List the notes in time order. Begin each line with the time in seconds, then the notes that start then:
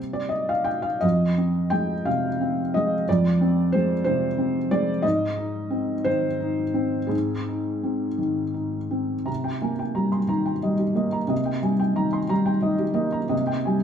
Already playing: C3 G3 A#3 C4
0.13 D5
0.29 D#5
0.49 F5
0.64 G5
0.82 F5
1.01 F2 D#5
1.38 C4
1.70 G#3 G5
2.05 C3 F5
2.41 C4
2.74 G#3 D#5
3.09 F2 D5
3.41 C4
3.72 G#3 C5
4.04 C3 C5
4.38 C4
4.71 G#3 D5
5.02 G#2 D#5
5.37 D#4
5.70 C4
6.04 D#3 C5
6.40 D#4
6.74 C4
7.07 G#2 G#4
7.48 D#4
7.83 C4
8.18 D#3
8.54 D#4
8.91 C4
9.25 C3 A#5
9.44 G5
9.62 A#3 G#5
9.79 G5
9.95 G3 A#5
10.12 C6
10.28 D#3 A#5
10.46 G5
10.63 G3 D#5
10.79 G4
10.95 A#3 D#5
11.12 A#5
11.28 C3 D#5
11.45 G5
11.62 G3 G#5
11.79 G5
11.95 D#3 A#5
12.13 C6
12.29 G3 A#5
12.46 G5
12.62 D#3 D#5
12.79 G4
12.94 A#3 D#5
13.12 A#5
13.29 C3 D#5
13.47 G5
13.65 G3 G#5